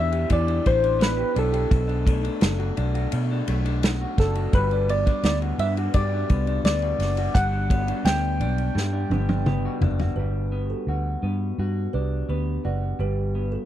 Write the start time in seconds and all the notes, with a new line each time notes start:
Already playing: E2 E3 B3 D4 G4 E5
0.12 G4, ride
0.29 E2 E3 D5, kick, ride
0.47 D4, ride
0.66 A1 C5, kick, ride
0.83 D4, ride
0.99 B3 B4, snare, ride
1.17 G4
1.34 B1 D4, ride
1.39 A4
1.52 G4, ride
1.70 B1 B2, kick, ride
1.88 D4, ride
2.05 A3, kick, ride
2.23 D4, ride
2.41 F#1 F#3, snare, ride
2.59 F#4, ride
2.77 B1 D4, ride
2.94 F#4, ride
3.12 B2, ride
3.31 D4
3.48 B1 A3, ride
3.65 D4, ride
3.83 F#3, snare, ride
4.01 F#4
4.18 F#1 D4 A4, kick, snare, ride
4.35 F#4, ride
4.53 G1 G3 B4, kick, ride
4.71 D4, ride
4.88 B3 D5, ride
5.06 D4, kick, ride
5.23 D2 B3 D5, snare, ride
5.42 F#4, ride
5.58 G2 D4 E5, ride
5.77 F#4, ride
5.94 G2 G3 D5, kick, ride
6.13 D4
6.30 C2 B3, kick, ride
6.47 D4, ride
6.64 D2 B3 D5, snare, ride
6.82 F#4, ride
6.99 F#1 D4, snare, open hi-hat, ride
7.17 F#4, ride
7.34 G1 G3 F#5, kick, hi-hat pedal, ride
7.52 D4
7.70 B3, kick, ride
7.88 D4, ride
8.05 D2 B3 G5, snare, ride
8.40 B1 D4, ride
8.58 ride
8.75 G2 G3, snare
8.93 D4
9.10 G1 B3, high tom
9.29 D4, high tom
9.46 B3, mid tom
9.65 F#4
9.81 F#1 D4, floor tom
10.00 F#4, floor tom
10.16 G1 G3 G4 B4
10.52 B3
10.70 F#4 A4
10.87 D2 F#4
11.23 G2 B3
11.58 G2 F#4
11.93 C2 D4 G4 B4
12.29 D2 B3 G4 B4
12.65 F#1 F#4 B4 D5
12.99 G1 G3 G4 B4
13.35 B3
13.52 F#4 A4